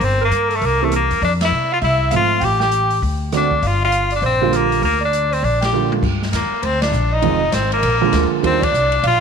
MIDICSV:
0, 0, Header, 1, 7, 480
1, 0, Start_track
1, 0, Key_signature, -2, "minor"
1, 0, Tempo, 300451
1, 30, Time_signature, 4, 2, 24, 8
1, 14701, End_track
2, 0, Start_track
2, 0, Title_t, "Alto saxophone"
2, 0, Program_c, 0, 65
2, 6, Note_on_c, 0, 72, 66
2, 321, Note_off_c, 0, 72, 0
2, 337, Note_on_c, 0, 70, 69
2, 778, Note_on_c, 0, 69, 67
2, 802, Note_off_c, 0, 70, 0
2, 975, Note_on_c, 0, 70, 75
2, 999, Note_off_c, 0, 69, 0
2, 1299, Note_on_c, 0, 69, 58
2, 1323, Note_off_c, 0, 70, 0
2, 1462, Note_off_c, 0, 69, 0
2, 1471, Note_on_c, 0, 70, 66
2, 1919, Note_off_c, 0, 70, 0
2, 1960, Note_on_c, 0, 74, 68
2, 2094, Note_off_c, 0, 74, 0
2, 2267, Note_on_c, 0, 76, 69
2, 2709, Note_off_c, 0, 76, 0
2, 2751, Note_on_c, 0, 77, 76
2, 2828, Note_off_c, 0, 77, 0
2, 2902, Note_on_c, 0, 76, 74
2, 3355, Note_off_c, 0, 76, 0
2, 3363, Note_on_c, 0, 77, 82
2, 3848, Note_on_c, 0, 79, 79
2, 3872, Note_off_c, 0, 77, 0
2, 4142, Note_off_c, 0, 79, 0
2, 4151, Note_on_c, 0, 79, 75
2, 4776, Note_off_c, 0, 79, 0
2, 5337, Note_on_c, 0, 74, 69
2, 5800, Note_on_c, 0, 77, 65
2, 5824, Note_off_c, 0, 74, 0
2, 6101, Note_off_c, 0, 77, 0
2, 6157, Note_on_c, 0, 77, 71
2, 6570, Note_off_c, 0, 77, 0
2, 6580, Note_on_c, 0, 74, 66
2, 6746, Note_off_c, 0, 74, 0
2, 6756, Note_on_c, 0, 72, 72
2, 7236, Note_on_c, 0, 70, 72
2, 7260, Note_off_c, 0, 72, 0
2, 7701, Note_off_c, 0, 70, 0
2, 7710, Note_on_c, 0, 70, 73
2, 7989, Note_off_c, 0, 70, 0
2, 7998, Note_on_c, 0, 74, 72
2, 8490, Note_on_c, 0, 72, 72
2, 8514, Note_off_c, 0, 74, 0
2, 8680, Note_on_c, 0, 74, 78
2, 8704, Note_off_c, 0, 72, 0
2, 8951, Note_off_c, 0, 74, 0
2, 8960, Note_on_c, 0, 79, 64
2, 9415, Note_off_c, 0, 79, 0
2, 10098, Note_on_c, 0, 70, 57
2, 10582, Note_on_c, 0, 72, 64
2, 10606, Note_off_c, 0, 70, 0
2, 10872, Note_off_c, 0, 72, 0
2, 10882, Note_on_c, 0, 74, 65
2, 11370, Note_on_c, 0, 75, 75
2, 11394, Note_off_c, 0, 74, 0
2, 12019, Note_on_c, 0, 72, 70
2, 12043, Note_off_c, 0, 75, 0
2, 12328, Note_off_c, 0, 72, 0
2, 12352, Note_on_c, 0, 70, 74
2, 13238, Note_off_c, 0, 70, 0
2, 13475, Note_on_c, 0, 72, 79
2, 13745, Note_on_c, 0, 74, 81
2, 13769, Note_off_c, 0, 72, 0
2, 14415, Note_off_c, 0, 74, 0
2, 14438, Note_on_c, 0, 77, 84
2, 14701, Note_off_c, 0, 77, 0
2, 14701, End_track
3, 0, Start_track
3, 0, Title_t, "Tenor saxophone"
3, 0, Program_c, 1, 66
3, 69, Note_on_c, 1, 60, 85
3, 353, Note_off_c, 1, 60, 0
3, 398, Note_on_c, 1, 58, 77
3, 897, Note_on_c, 1, 57, 72
3, 921, Note_off_c, 1, 58, 0
3, 1061, Note_on_c, 1, 58, 86
3, 1085, Note_off_c, 1, 57, 0
3, 1353, Note_on_c, 1, 57, 65
3, 1377, Note_off_c, 1, 58, 0
3, 1502, Note_off_c, 1, 57, 0
3, 1537, Note_on_c, 1, 58, 79
3, 1954, Note_off_c, 1, 58, 0
3, 1995, Note_on_c, 1, 62, 83
3, 2122, Note_off_c, 1, 62, 0
3, 2314, Note_on_c, 1, 64, 76
3, 2735, Note_off_c, 1, 64, 0
3, 2772, Note_on_c, 1, 65, 73
3, 2844, Note_off_c, 1, 65, 0
3, 2944, Note_on_c, 1, 64, 85
3, 3377, Note_off_c, 1, 64, 0
3, 3456, Note_on_c, 1, 65, 103
3, 3916, Note_on_c, 1, 67, 86
3, 3940, Note_off_c, 1, 65, 0
3, 4193, Note_off_c, 1, 67, 0
3, 4202, Note_on_c, 1, 67, 86
3, 4804, Note_off_c, 1, 67, 0
3, 5382, Note_on_c, 1, 62, 78
3, 5865, Note_on_c, 1, 65, 87
3, 5889, Note_off_c, 1, 62, 0
3, 6134, Note_off_c, 1, 65, 0
3, 6144, Note_on_c, 1, 65, 84
3, 6570, Note_off_c, 1, 65, 0
3, 6644, Note_on_c, 1, 62, 74
3, 6780, Note_off_c, 1, 62, 0
3, 6804, Note_on_c, 1, 60, 83
3, 7283, Note_on_c, 1, 58, 76
3, 7307, Note_off_c, 1, 60, 0
3, 7741, Note_off_c, 1, 58, 0
3, 7750, Note_on_c, 1, 58, 76
3, 8016, Note_off_c, 1, 58, 0
3, 8071, Note_on_c, 1, 62, 73
3, 8533, Note_on_c, 1, 60, 73
3, 8557, Note_off_c, 1, 62, 0
3, 8709, Note_on_c, 1, 62, 84
3, 8733, Note_off_c, 1, 60, 0
3, 8996, Note_off_c, 1, 62, 0
3, 9026, Note_on_c, 1, 67, 74
3, 9450, Note_off_c, 1, 67, 0
3, 10157, Note_on_c, 1, 58, 66
3, 10627, Note_on_c, 1, 60, 81
3, 10651, Note_off_c, 1, 58, 0
3, 10905, Note_off_c, 1, 60, 0
3, 10915, Note_on_c, 1, 62, 74
3, 11410, Note_on_c, 1, 63, 91
3, 11434, Note_off_c, 1, 62, 0
3, 12050, Note_on_c, 1, 60, 74
3, 12074, Note_off_c, 1, 63, 0
3, 12343, Note_off_c, 1, 60, 0
3, 12362, Note_on_c, 1, 58, 77
3, 13243, Note_off_c, 1, 58, 0
3, 13520, Note_on_c, 1, 60, 88
3, 13810, Note_on_c, 1, 62, 94
3, 13834, Note_off_c, 1, 60, 0
3, 14448, Note_off_c, 1, 62, 0
3, 14493, Note_on_c, 1, 65, 103
3, 14701, Note_off_c, 1, 65, 0
3, 14701, End_track
4, 0, Start_track
4, 0, Title_t, "Grand piano"
4, 0, Program_c, 2, 0
4, 1309, Note_on_c, 2, 52, 64
4, 1315, Note_on_c, 2, 60, 61
4, 1316, Note_on_c, 2, 58, 57
4, 1322, Note_on_c, 2, 67, 69
4, 1462, Note_off_c, 2, 52, 0
4, 1465, Note_off_c, 2, 60, 0
4, 1466, Note_off_c, 2, 58, 0
4, 1469, Note_off_c, 2, 67, 0
4, 3395, Note_on_c, 2, 60, 45
4, 3398, Note_on_c, 2, 57, 40
4, 3400, Note_on_c, 2, 53, 45
4, 3406, Note_on_c, 2, 65, 55
4, 3876, Note_off_c, 2, 60, 0
4, 3878, Note_off_c, 2, 57, 0
4, 3879, Note_off_c, 2, 53, 0
4, 3882, Note_off_c, 2, 65, 0
4, 5307, Note_on_c, 2, 57, 48
4, 5309, Note_on_c, 2, 50, 57
4, 5313, Note_on_c, 2, 60, 47
4, 5315, Note_on_c, 2, 66, 55
4, 5585, Note_off_c, 2, 57, 0
4, 5586, Note_off_c, 2, 50, 0
4, 5587, Note_off_c, 2, 60, 0
4, 5589, Note_off_c, 2, 66, 0
4, 7048, Note_on_c, 2, 50, 61
4, 7058, Note_on_c, 2, 55, 64
4, 7058, Note_on_c, 2, 58, 64
4, 7063, Note_on_c, 2, 65, 85
4, 7676, Note_off_c, 2, 50, 0
4, 7681, Note_off_c, 2, 55, 0
4, 7681, Note_off_c, 2, 58, 0
4, 7684, Note_off_c, 2, 65, 0
4, 9159, Note_on_c, 2, 50, 57
4, 9159, Note_on_c, 2, 55, 51
4, 9165, Note_on_c, 2, 58, 50
4, 9167, Note_on_c, 2, 65, 65
4, 9638, Note_off_c, 2, 50, 0
4, 9638, Note_off_c, 2, 55, 0
4, 9641, Note_off_c, 2, 58, 0
4, 9642, Note_off_c, 2, 65, 0
4, 11538, Note_on_c, 2, 51, 62
4, 11541, Note_on_c, 2, 56, 54
4, 11543, Note_on_c, 2, 53, 50
4, 11543, Note_on_c, 2, 65, 70
4, 11552, Note_on_c, 2, 60, 57
4, 11818, Note_off_c, 2, 51, 0
4, 11819, Note_off_c, 2, 56, 0
4, 11820, Note_off_c, 2, 53, 0
4, 11820, Note_off_c, 2, 65, 0
4, 11825, Note_off_c, 2, 60, 0
4, 12798, Note_on_c, 2, 56, 65
4, 12800, Note_on_c, 2, 50, 77
4, 12803, Note_on_c, 2, 53, 61
4, 12807, Note_on_c, 2, 65, 80
4, 12810, Note_on_c, 2, 58, 65
4, 13427, Note_off_c, 2, 56, 0
4, 13428, Note_off_c, 2, 50, 0
4, 13430, Note_off_c, 2, 53, 0
4, 13431, Note_off_c, 2, 65, 0
4, 13433, Note_off_c, 2, 58, 0
4, 13464, Note_on_c, 2, 51, 53
4, 13468, Note_on_c, 2, 62, 53
4, 13469, Note_on_c, 2, 55, 51
4, 13472, Note_on_c, 2, 58, 52
4, 13478, Note_on_c, 2, 65, 64
4, 13739, Note_off_c, 2, 51, 0
4, 13741, Note_off_c, 2, 62, 0
4, 13742, Note_off_c, 2, 55, 0
4, 13743, Note_off_c, 2, 58, 0
4, 13746, Note_off_c, 2, 65, 0
4, 14701, End_track
5, 0, Start_track
5, 0, Title_t, "Upright bass"
5, 0, Program_c, 3, 32
5, 8, Note_on_c, 3, 31, 88
5, 466, Note_off_c, 3, 31, 0
5, 492, Note_on_c, 3, 43, 65
5, 948, Note_off_c, 3, 43, 0
5, 977, Note_on_c, 3, 36, 77
5, 1713, Note_off_c, 3, 36, 0
5, 1763, Note_on_c, 3, 40, 63
5, 1934, Note_off_c, 3, 40, 0
5, 1942, Note_on_c, 3, 41, 88
5, 2395, Note_off_c, 3, 41, 0
5, 2417, Note_on_c, 3, 48, 60
5, 2872, Note_off_c, 3, 48, 0
5, 2902, Note_on_c, 3, 36, 83
5, 3355, Note_off_c, 3, 36, 0
5, 3386, Note_on_c, 3, 32, 71
5, 3838, Note_off_c, 3, 32, 0
5, 3859, Note_on_c, 3, 33, 80
5, 4780, Note_off_c, 3, 33, 0
5, 4825, Note_on_c, 3, 38, 82
5, 5743, Note_off_c, 3, 38, 0
5, 5790, Note_on_c, 3, 31, 80
5, 6706, Note_off_c, 3, 31, 0
5, 6739, Note_on_c, 3, 34, 81
5, 7660, Note_off_c, 3, 34, 0
5, 7699, Note_on_c, 3, 38, 89
5, 8620, Note_off_c, 3, 38, 0
5, 8667, Note_on_c, 3, 34, 72
5, 9583, Note_off_c, 3, 34, 0
5, 9621, Note_on_c, 3, 43, 75
5, 10094, Note_off_c, 3, 43, 0
5, 10103, Note_on_c, 3, 39, 73
5, 10390, Note_off_c, 3, 39, 0
5, 10584, Note_on_c, 3, 38, 72
5, 11038, Note_off_c, 3, 38, 0
5, 11048, Note_on_c, 3, 34, 87
5, 11526, Note_off_c, 3, 34, 0
5, 11539, Note_on_c, 3, 29, 75
5, 12011, Note_off_c, 3, 29, 0
5, 12024, Note_on_c, 3, 32, 79
5, 12488, Note_off_c, 3, 32, 0
5, 12497, Note_on_c, 3, 34, 77
5, 12969, Note_off_c, 3, 34, 0
5, 12985, Note_on_c, 3, 38, 85
5, 13269, Note_off_c, 3, 38, 0
5, 13467, Note_on_c, 3, 39, 81
5, 13919, Note_off_c, 3, 39, 0
5, 13928, Note_on_c, 3, 36, 79
5, 14404, Note_off_c, 3, 36, 0
5, 14432, Note_on_c, 3, 34, 76
5, 14701, Note_off_c, 3, 34, 0
5, 14701, End_track
6, 0, Start_track
6, 0, Title_t, "Muted upright bass strokes"
6, 10406, Note_on_c, 9, 29, 37
6, 10565, Note_off_c, 9, 29, 0
6, 13280, Note_on_c, 9, 29, 39
6, 13439, Note_off_c, 9, 29, 0
6, 14701, End_track
7, 0, Start_track
7, 0, Title_t, "Drums"
7, 16, Note_on_c, 9, 46, 44
7, 17, Note_on_c, 9, 36, 32
7, 176, Note_off_c, 9, 46, 0
7, 177, Note_off_c, 9, 36, 0
7, 505, Note_on_c, 9, 42, 47
7, 665, Note_off_c, 9, 42, 0
7, 807, Note_on_c, 9, 46, 32
7, 967, Note_off_c, 9, 46, 0
7, 985, Note_on_c, 9, 46, 42
7, 987, Note_on_c, 9, 36, 28
7, 1145, Note_off_c, 9, 46, 0
7, 1146, Note_off_c, 9, 36, 0
7, 1464, Note_on_c, 9, 42, 54
7, 1467, Note_on_c, 9, 37, 56
7, 1624, Note_off_c, 9, 42, 0
7, 1627, Note_off_c, 9, 37, 0
7, 1768, Note_on_c, 9, 46, 35
7, 1928, Note_off_c, 9, 46, 0
7, 1949, Note_on_c, 9, 36, 34
7, 1953, Note_on_c, 9, 46, 41
7, 2109, Note_off_c, 9, 36, 0
7, 2113, Note_off_c, 9, 46, 0
7, 2250, Note_on_c, 9, 51, 61
7, 2253, Note_on_c, 9, 38, 67
7, 2410, Note_off_c, 9, 51, 0
7, 2413, Note_off_c, 9, 38, 0
7, 2902, Note_on_c, 9, 46, 40
7, 2907, Note_on_c, 9, 36, 30
7, 3062, Note_off_c, 9, 46, 0
7, 3067, Note_off_c, 9, 36, 0
7, 3372, Note_on_c, 9, 42, 51
7, 3376, Note_on_c, 9, 37, 56
7, 3532, Note_off_c, 9, 42, 0
7, 3535, Note_off_c, 9, 37, 0
7, 3855, Note_on_c, 9, 46, 42
7, 3862, Note_on_c, 9, 36, 34
7, 4014, Note_off_c, 9, 46, 0
7, 4022, Note_off_c, 9, 36, 0
7, 4157, Note_on_c, 9, 38, 42
7, 4317, Note_off_c, 9, 38, 0
7, 4339, Note_on_c, 9, 42, 45
7, 4498, Note_off_c, 9, 42, 0
7, 4640, Note_on_c, 9, 46, 34
7, 4800, Note_off_c, 9, 46, 0
7, 4830, Note_on_c, 9, 36, 31
7, 4837, Note_on_c, 9, 46, 40
7, 4990, Note_off_c, 9, 36, 0
7, 4997, Note_off_c, 9, 46, 0
7, 5311, Note_on_c, 9, 42, 50
7, 5314, Note_on_c, 9, 37, 58
7, 5314, Note_on_c, 9, 38, 33
7, 5471, Note_off_c, 9, 42, 0
7, 5474, Note_off_c, 9, 37, 0
7, 5474, Note_off_c, 9, 38, 0
7, 5610, Note_on_c, 9, 36, 45
7, 5770, Note_off_c, 9, 36, 0
7, 5791, Note_on_c, 9, 36, 31
7, 5792, Note_on_c, 9, 46, 43
7, 5951, Note_off_c, 9, 36, 0
7, 5951, Note_off_c, 9, 46, 0
7, 6264, Note_on_c, 9, 42, 53
7, 6424, Note_off_c, 9, 42, 0
7, 6557, Note_on_c, 9, 46, 37
7, 6716, Note_off_c, 9, 46, 0
7, 6746, Note_on_c, 9, 46, 40
7, 6747, Note_on_c, 9, 36, 28
7, 6906, Note_off_c, 9, 46, 0
7, 6907, Note_off_c, 9, 36, 0
7, 7234, Note_on_c, 9, 42, 47
7, 7237, Note_on_c, 9, 37, 52
7, 7394, Note_off_c, 9, 42, 0
7, 7397, Note_off_c, 9, 37, 0
7, 7542, Note_on_c, 9, 46, 35
7, 7702, Note_off_c, 9, 46, 0
7, 7713, Note_on_c, 9, 36, 34
7, 7714, Note_on_c, 9, 46, 43
7, 7873, Note_off_c, 9, 36, 0
7, 7873, Note_off_c, 9, 46, 0
7, 8198, Note_on_c, 9, 42, 49
7, 8358, Note_off_c, 9, 42, 0
7, 8512, Note_on_c, 9, 46, 38
7, 8672, Note_off_c, 9, 46, 0
7, 8680, Note_on_c, 9, 36, 31
7, 8693, Note_on_c, 9, 46, 40
7, 8840, Note_off_c, 9, 36, 0
7, 8853, Note_off_c, 9, 46, 0
7, 8983, Note_on_c, 9, 51, 55
7, 8987, Note_on_c, 9, 38, 70
7, 9143, Note_off_c, 9, 51, 0
7, 9146, Note_off_c, 9, 38, 0
7, 9460, Note_on_c, 9, 48, 61
7, 9620, Note_off_c, 9, 48, 0
7, 9631, Note_on_c, 9, 36, 77
7, 9638, Note_on_c, 9, 49, 69
7, 9790, Note_off_c, 9, 36, 0
7, 9798, Note_off_c, 9, 49, 0
7, 9945, Note_on_c, 9, 38, 44
7, 10105, Note_off_c, 9, 38, 0
7, 10112, Note_on_c, 9, 36, 21
7, 10112, Note_on_c, 9, 44, 49
7, 10112, Note_on_c, 9, 51, 59
7, 10115, Note_on_c, 9, 38, 61
7, 10271, Note_off_c, 9, 44, 0
7, 10271, Note_off_c, 9, 51, 0
7, 10272, Note_off_c, 9, 36, 0
7, 10274, Note_off_c, 9, 38, 0
7, 10588, Note_on_c, 9, 36, 19
7, 10588, Note_on_c, 9, 51, 55
7, 10748, Note_off_c, 9, 36, 0
7, 10748, Note_off_c, 9, 51, 0
7, 10894, Note_on_c, 9, 51, 59
7, 10897, Note_on_c, 9, 38, 77
7, 11053, Note_off_c, 9, 51, 0
7, 11056, Note_off_c, 9, 38, 0
7, 11065, Note_on_c, 9, 44, 49
7, 11225, Note_off_c, 9, 44, 0
7, 11541, Note_on_c, 9, 51, 51
7, 11544, Note_on_c, 9, 36, 25
7, 11700, Note_off_c, 9, 51, 0
7, 11704, Note_off_c, 9, 36, 0
7, 12019, Note_on_c, 9, 44, 62
7, 12019, Note_on_c, 9, 51, 62
7, 12022, Note_on_c, 9, 38, 62
7, 12025, Note_on_c, 9, 36, 17
7, 12178, Note_off_c, 9, 44, 0
7, 12178, Note_off_c, 9, 51, 0
7, 12182, Note_off_c, 9, 38, 0
7, 12185, Note_off_c, 9, 36, 0
7, 12332, Note_on_c, 9, 51, 39
7, 12491, Note_off_c, 9, 51, 0
7, 12506, Note_on_c, 9, 51, 60
7, 12507, Note_on_c, 9, 36, 23
7, 12665, Note_off_c, 9, 51, 0
7, 12667, Note_off_c, 9, 36, 0
7, 12982, Note_on_c, 9, 44, 52
7, 12982, Note_on_c, 9, 51, 54
7, 12985, Note_on_c, 9, 38, 63
7, 12989, Note_on_c, 9, 36, 24
7, 13142, Note_off_c, 9, 44, 0
7, 13142, Note_off_c, 9, 51, 0
7, 13145, Note_off_c, 9, 38, 0
7, 13149, Note_off_c, 9, 36, 0
7, 13475, Note_on_c, 9, 36, 24
7, 13482, Note_on_c, 9, 51, 55
7, 13635, Note_off_c, 9, 36, 0
7, 13642, Note_off_c, 9, 51, 0
7, 13778, Note_on_c, 9, 36, 70
7, 13789, Note_on_c, 9, 51, 72
7, 13938, Note_off_c, 9, 36, 0
7, 13949, Note_off_c, 9, 51, 0
7, 13963, Note_on_c, 9, 44, 48
7, 14123, Note_off_c, 9, 44, 0
7, 14247, Note_on_c, 9, 51, 45
7, 14407, Note_off_c, 9, 51, 0
7, 14431, Note_on_c, 9, 36, 20
7, 14434, Note_on_c, 9, 51, 55
7, 14591, Note_off_c, 9, 36, 0
7, 14594, Note_off_c, 9, 51, 0
7, 14701, End_track
0, 0, End_of_file